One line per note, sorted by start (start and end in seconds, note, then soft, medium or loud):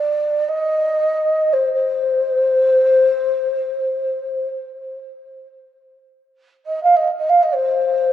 0.00 0.49 D5 medium
0.48 1.54 D#5 medium
1.53 1.73 C5 medium
1.73 4.48 C5 medium
6.66 6.82 D#5 medium
6.83 6.97 F5 medium
6.96 7.07 D#5 medium
7.07 7.09 D#5 medium
7.18 7.30 D#5 medium
7.29 7.44 F5 medium
7.42 7.56 D#5 medium
7.54 8.13 C5 medium